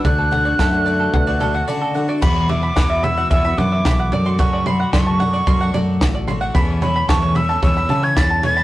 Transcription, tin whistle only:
0.05 1.64 F#6 medium
2.21 2.51 B5 medium
2.49 3.05 D6 medium
3.04 3.30 E6 medium
3.31 3.59 E6 loud
3.58 4.41 D6 loud
4.40 4.68 C#6 medium
4.67 4.93 B5 medium
4.94 5.09 C6 medium
5.09 5.70 C#6 medium
6.82 7.10 B5 medium
7.09 7.38 C#6 medium
7.36 7.63 E6 medium
7.63 8.05 E6 medium
8.04 8.18 G#6 medium
8.17 8.44 A6 loud
8.46 8.63 A6 loud

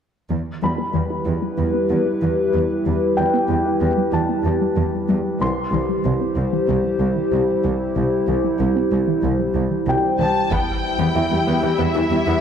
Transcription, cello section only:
0.31 0.39 E2 soft
0.62 0.70 E2 soft
0.95 1.03 E2 soft
1.26 1.34 E2 soft
1.58 1.66 E2 soft
1.90 1.98 E2 soft
2.22 2.30 E2 soft
2.54 2.62 E2 soft
2.86 2.94 E2 soft
3.18 3.26 E2 soft
3.50 3.58 E2 soft
3.81 3.89 E2 soft
4.13 4.21 E2 soft
4.45 4.53 E2 soft
4.77 4.85 E2 soft
5.09 5.17 E2 soft
5.41 5.49 C2 soft
5.73 5.81 C2 soft
6.05 6.13 C2 soft
6.37 6.45 C2 soft
6.68 6.76 C2 soft
7.00 7.08 C2 soft
7.33 7.41 C2 soft
7.64 7.72 C2 soft
7.96 8.04 C2 soft
8.28 8.36 C2 soft
8.60 8.68 C2 soft
8.92 9.00 C2 soft
9.23 9.31 C2 soft
9.55 9.63 C2 soft
9.87 9.95 C2 soft
10.19 10.27 C2 soft
10.51 10.57 E2 soft
10.99 11.05 E2 soft
11.15 11.22 E2 soft
11.31 11.38 E2 soft
11.47 11.53 E2 soft
11.63 11.70 E2 soft
11.79 11.86 E2 soft
11.95 12.01 E2 soft
12.11 12.17 E2 soft
12.26 12.33 E2 soft

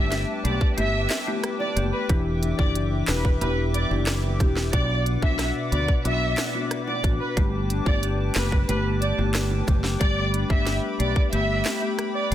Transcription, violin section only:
0.00 0.17 E5 medium
0.45 0.66 D5 medium
0.78 1.24 E5 loud
1.60 1.71 D5 medium
1.93 2.04 B4 medium
2.59 2.70 D5 medium
3.08 3.19 B4 medium
3.41 3.52 B4 medium
3.74 3.85 D5 medium
4.73 4.95 D5 loud
5.23 5.44 E5 medium
5.72 5.94 D5 medium
6.05 6.52 E5 loud
6.88 6.99 D5 medium
7.21 7.31 B4 medium
7.87 7.97 D5 medium
8.36 8.47 B4 medium
8.69 8.80 B4 medium
9.02 9.13 D5 medium
10.01 10.22 D5 loud
10.50 10.72 E5 medium
11.00 11.21 D5 medium
11.33 11.79 E5 loud
12.15 12.26 D5 medium

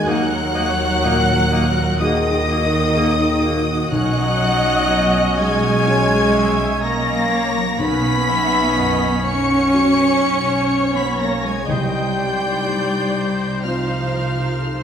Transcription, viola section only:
0.09 0.56 A#4 medium
0.56 1.04 C#5 medium
1.05 1.51 A#4 medium
1.52 2.01 A#4 medium
2.00 2.49 G#4 medium
2.49 2.97 F#4 medium
2.96 3.43 G#4 medium
3.43 3.91 F#4 medium
3.92 5.86 D#5 loud
5.86 6.34 C#5 medium
6.36 6.83 E5 medium
6.84 7.32 D#5 medium
7.33 7.79 C#5 medium
7.81 8.29 B4 medium
8.29 8.77 E5 medium
8.77 9.25 D#5 medium
9.26 11.65 C#5 loud
11.68 12.16 D#5 medium
12.16 13.64 D5 medium
13.64 14.13 C5 medium
14.14 14.64 A#4 medium
14.63 14.83 A4 medium

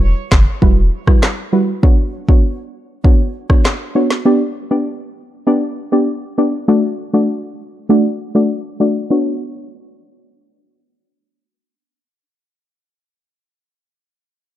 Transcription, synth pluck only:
0.62 0.77 G3 medium
0.62 0.77 E4 medium
0.62 0.77 F#4 medium
0.62 0.77 B4 loud
1.07 1.22 G3 medium
1.07 1.22 E4 medium
1.07 1.22 F#4 medium
1.07 1.23 B4 medium
1.53 1.68 G3 medium
1.53 1.68 E4 medium
1.53 1.68 F#4 medium
1.53 1.68 B4 medium
1.83 1.98 B3 medium
1.83 1.98 D4 medium
1.83 1.98 F#4 medium
1.83 1.98 C#5 loud
2.29 2.44 B3 medium
2.29 2.44 D4 medium
2.29 2.44 F#4 medium
2.29 2.44 C#5 medium
3.04 3.19 B3 medium
3.04 3.19 D4 medium
3.04 3.19 F#4 medium
3.04 3.20 C#5 loud
3.50 3.65 B3 medium
3.50 3.65 D4 medium
3.50 3.65 F#4 medium
3.50 3.65 C#5 medium
3.95 4.10 B3 medium
3.95 4.10 D4 medium
3.95 4.10 F#4 medium
3.95 4.11 C#5 medium
4.25 4.40 B3 medium
4.25 4.41 D4 medium
4.25 4.41 G4 medium
4.25 4.41 D5 loud
4.71 4.86 B3 medium
4.71 4.86 D4 medium
4.71 4.86 G4 medium
4.71 4.86 D5 medium
5.47 5.62 B3 medium
5.47 5.62 D4 medium
5.47 5.62 G4 medium
5.47 5.62 D5 loud
5.92 6.07 B3 medium
5.92 6.07 D4 medium
5.92 6.07 G4 medium
5.92 6.07 D5 medium
6.38 6.53 B3 medium
6.38 6.53 D4 medium
6.38 6.53 G4 medium
6.38 6.53 D5 medium
6.68 6.83 A3 loud
6.68 6.83 D4 medium
6.68 6.83 F#4 medium
6.68 6.83 D5 loud
7.13 7.28 A3 medium
7.13 7.29 D4 medium
7.13 7.29 F#4 medium
7.13 7.29 D5 medium
7.89 8.04 A3 medium
7.89 8.04 D4 medium
7.89 8.04 F#4 medium
7.89 8.05 D5 loud
8.35 8.50 A3 medium
8.35 8.50 D4 medium
8.35 8.50 F#4 medium
8.35 8.50 D5 medium
8.80 8.95 A3 medium
8.80 8.95 D4 medium
8.80 8.95 F#4 medium
8.80 8.95 D5 medium
9.10 12.48 B3 medium
9.10 12.49 D4 medium
9.10 12.49 F#4 medium
9.10 12.49 C#5 loud

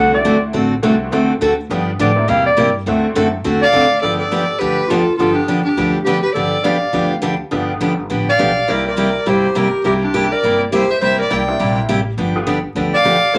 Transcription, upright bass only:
0.00 0.24 C2 medium
0.25 0.53 D2 medium
0.54 0.82 A1 medium
0.83 1.11 C2 loud
1.11 1.40 E2 medium
1.41 1.69 D2 loud
1.70 1.98 G2 medium
1.99 2.27 A2 loud
2.29 2.57 E2 medium
2.58 2.86 G2 medium
2.86 3.15 D2 medium
3.16 3.44 F#2 loud
3.45 3.73 E2 medium
3.74 4.02 D2 loud
4.03 4.49 G1 medium
4.61 5.08 D2 medium
5.19 5.66 G1 medium
5.77 6.24 D2 medium
6.35 6.82 G1 medium
6.93 7.40 D2 medium
7.52 7.75 G1 medium
7.80 8.05 G1 medium
8.10 8.35 A1 medium
8.40 8.64 B1 medium
8.68 9.15 C2 medium
9.26 9.73 G1 medium
9.85 10.32 C2 medium
10.43 10.90 G1 medium
11.02 11.25 C2 medium
11.31 11.56 C2 medium
11.60 11.84 A#1 medium
11.89 12.13 A1 medium
12.17 12.64 G1 medium
12.75 13.22 D2 medium
13.35 13.38 D2 medium

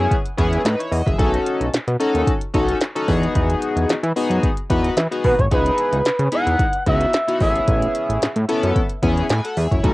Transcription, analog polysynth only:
0.00 0.16 B3 medium
0.00 0.16 C#4 medium
0.00 0.16 E4 loud
0.00 0.16 G#4 loud
0.37 0.62 B3 medium
0.37 0.62 C#4 medium
0.37 0.62 E4 medium
0.37 0.62 G#4 loud
0.65 0.79 D#4 medium
0.65 0.79 B4 medium
0.79 0.92 E4 medium
0.79 0.91 C#5 medium
0.92 1.06 F#4 medium
0.92 1.06 D#5 medium
1.06 1.32 G#4 medium
1.06 1.32 E5 medium
1.18 1.66 C#4 medium
1.18 1.66 D#4 medium
1.18 1.66 F#4 medium
1.18 1.67 A4 loud
2.00 2.32 C#4 medium
2.00 2.32 D#4 medium
2.00 2.32 F#4 medium
2.00 2.32 A4 loud
2.54 2.78 C#4 medium
2.54 2.78 D#4 medium
2.54 2.78 F#4 medium
2.54 2.78 A4 loud
2.95 3.08 C#4 medium
2.95 3.07 D#4 medium
2.95 3.07 F#4 medium
2.95 3.08 A4 loud
3.08 3.95 B3 medium
3.08 3.95 D#4 medium
3.08 3.95 F#4 medium
3.08 3.95 G#4 medium
4.16 4.48 B3 loud
4.16 4.48 D#4 medium
4.16 4.48 F#4 medium
4.16 4.48 G#4 loud
4.70 4.94 B3 medium
4.70 4.94 D#4 medium
4.70 4.94 F#4 medium
4.70 4.94 B4 medium
5.11 5.35 B3 medium
5.11 5.35 D#4 medium
5.11 5.35 F#4 medium
5.11 5.35 G#4 medium
5.51 5.99 B3 medium
5.51 5.99 D#4 medium
5.51 5.99 E4 medium
5.51 5.99 G#4 medium
6.32 6.64 B3 medium
6.32 6.64 D#4 medium
6.32 6.64 E4 medium
6.32 6.64 G#4 medium
6.86 7.10 B3 medium
6.86 7.10 D#4 medium
6.86 7.11 E4 medium
6.86 7.11 F#4 medium
7.28 7.39 B3 medium
7.28 7.41 D#4 medium
7.28 7.40 E4 medium
7.28 7.41 F#4 medium
7.40 8.27 B3 medium
7.40 8.28 C#4 medium
7.40 8.28 E4 medium
7.40 8.28 G#4 medium
8.48 8.80 B3 loud
8.48 8.80 C#4 medium
8.48 8.80 E4 medium
8.48 8.81 A4 loud
9.02 9.26 B3 medium
9.02 9.27 C#4 medium
9.02 9.27 E4 medium
9.02 9.27 G#4 loud
9.30 9.44 B4 medium
9.30 9.44 G#5 medium
9.44 9.57 A4 medium
9.44 9.56 F#5 medium
9.57 9.71 G#4 medium
9.57 9.71 E5 medium
9.71 9.94 E4 medium
9.71 9.94 C#5 medium
9.83 9.94 A3 medium
9.83 9.94 C#4 medium
9.83 9.94 D#4 medium
9.83 9.94 F#4 medium

